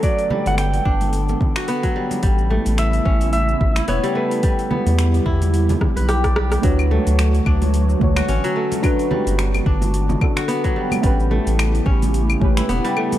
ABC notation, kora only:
X:1
M:4/4
L:1/16
Q:"Swing 16ths" 1/4=109
K:Amix
V:1 name="Kora"
F,2 G,4 D4 z F B, F, G, z | G,2 A,4 C4 z E B, G, A, z | G,2 B,4 E4 z B G d G z | F,2 A,4 D4 z F C F, A, z |
F,2 G,4 D4 z F B, F, G, z | G,2 A,4 C4 z E B, G, A, z |]